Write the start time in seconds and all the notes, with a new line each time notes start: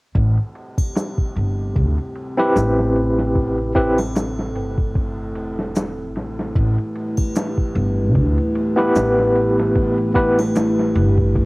0.15 A1 A3 C4 E4 G4, kick, ride
0.38 ride
0.55 ride
0.78 kick, triangle
0.95 snare, ride, shaker
1.18 kick
1.36 G1, ride
1.75 D2, kick, ride
1.98 ride
2.15 ride
2.37 C4 E4 G4 B4, snare
2.55 A1, snare, ride, shaker
2.79 snare
2.96 ride
3.19 snare
3.35 A4, kick, ride
3.58 ride
3.75 C4 E4 G4 B4, kick, ride
3.98 snare, triangle
4.15 snare, ride, shaker
4.39 snare
4.56 G1, ride
4.78 kick
4.95 kick, ride
5.35 E1, ride
5.59 snare
5.76 snare, open hi-hat, shaker
6.16 A1, snare, ride
6.39 snare
6.56 A1 G4 B4, kick, ride
6.78 ride
6.96 ride
7.17 kick, triangle
7.35 snare, ride, shaker
7.58 kick
7.75 G1, ride
8.15 D2, kick, ride
8.38 ride
8.55 ride
8.76 B3 E4 G4 B4, snare
8.95 A1, snare, ride, shaker
9.19 snare
9.36 ride
9.59 snare
9.75 kick, ride
9.98 ride
10.14 B3 E4 G4 B4, kick, ride
10.39 snare, triangle
10.55 snare, ride, shaker
10.79 snare
10.95 G1, ride
11.18 kick
11.35 kick, ride